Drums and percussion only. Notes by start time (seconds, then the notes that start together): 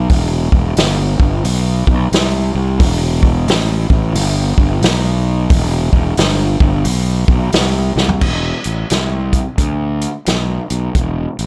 0.10 kick, open hi-hat
0.52 kick
0.77 snare, open hi-hat
1.20 kick
1.45 open hi-hat
1.87 kick
2.13 snare, open hi-hat
2.80 kick, open hi-hat
3.23 kick
3.48 snare, open hi-hat
3.90 kick
4.15 open hi-hat
4.58 kick
4.82 snare, open hi-hat
5.50 kick, open hi-hat
5.93 kick
6.17 snare, open hi-hat
6.60 kick
6.85 open hi-hat
7.28 kick
7.52 snare, open hi-hat
7.98 snare
8.09 floor tom
8.21 kick, crash
8.64 closed hi-hat
8.90 snare, closed hi-hat
9.33 kick, closed hi-hat
9.58 kick, closed hi-hat
10.01 closed hi-hat
10.26 snare, closed hi-hat
10.70 closed hi-hat
10.95 kick, closed hi-hat
11.39 closed hi-hat